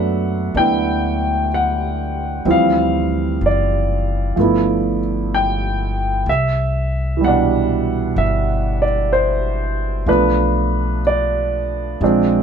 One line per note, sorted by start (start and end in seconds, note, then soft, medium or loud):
0.00 0.51 F#2 medium
0.00 2.44 F#3 soft
0.00 2.45 A3 soft
0.00 0.54 B3 soft
0.00 0.54 D4 soft
0.00 2.47 E5 medium
0.00 0.52 F#5 medium
0.55 2.42 D2 medium
0.55 2.46 B3 soft
0.55 2.46 D4 soft
0.55 2.47 E4 soft
0.55 1.47 G5 medium
1.54 2.51 F#5 medium
2.45 3.37 D2 medium
2.45 4.37 E3 soft
2.45 4.35 F3 soft
2.45 4.36 G3 soft
2.45 4.37 C4 soft
2.51 3.46 F5 medium
3.41 4.32 F#1 medium
3.46 4.98 D5 medium
4.36 6.23 G1 medium
4.36 6.27 F3 soft
4.36 6.28 A3 soft
4.36 6.28 B3 soft
4.41 6.29 E4 soft
5.34 6.24 G5 medium
6.26 8.12 C2 medium
6.26 7.19 E5 medium
7.17 10.05 E3 soft
7.17 10.07 G3 soft
7.24 10.09 B2 soft
7.24 8.21 F#5 medium
7.28 10.07 D4 soft
8.16 10.04 G1 medium
8.16 8.82 E5 medium
8.82 9.14 D5 medium
9.13 10.04 C5 medium
10.06 11.96 B1 medium
10.06 12.00 F3 soft
10.06 12.01 A3 soft
10.06 12.01 B3 soft
10.06 12.02 D4 soft
10.06 11.01 B4 medium
11.07 12.43 D5 medium
12.01 12.43 A#1 medium
12.01 12.43 F3 soft
12.01 12.43 G#3 soft
12.01 12.43 C4 soft
12.01 12.43 D4 soft